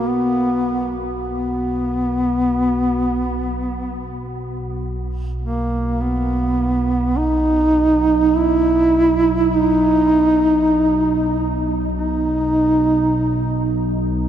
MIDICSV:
0, 0, Header, 1, 4, 480
1, 0, Start_track
1, 0, Key_signature, 5, "major"
1, 0, Tempo, 500000
1, 13715, End_track
2, 0, Start_track
2, 0, Title_t, "Singing bowl"
2, 0, Program_c, 0, 14
2, 0, Note_on_c, 0, 66, 52
2, 13715, Note_off_c, 0, 66, 0
2, 13715, End_track
3, 0, Start_track
3, 0, Title_t, "Duduk"
3, 0, Program_c, 1, 69
3, 68, Note_on_c, 1, 59, 93
3, 944, Note_off_c, 1, 59, 0
3, 1220, Note_on_c, 1, 59, 84
3, 4010, Note_off_c, 1, 59, 0
3, 5198, Note_on_c, 1, 58, 75
3, 5767, Note_on_c, 1, 59, 81
3, 5782, Note_off_c, 1, 58, 0
3, 6883, Note_on_c, 1, 63, 108
3, 6897, Note_off_c, 1, 59, 0
3, 8020, Note_on_c, 1, 64, 117
3, 8035, Note_off_c, 1, 63, 0
3, 9168, Note_on_c, 1, 63, 121
3, 9183, Note_off_c, 1, 64, 0
3, 11191, Note_off_c, 1, 63, 0
3, 11444, Note_on_c, 1, 63, 93
3, 13147, Note_off_c, 1, 63, 0
3, 13715, End_track
4, 0, Start_track
4, 0, Title_t, "Synth drone"
4, 0, Program_c, 2, 95
4, 0, Note_on_c, 2, 35, 66
4, 13715, Note_off_c, 2, 35, 0
4, 13715, End_track
0, 0, End_of_file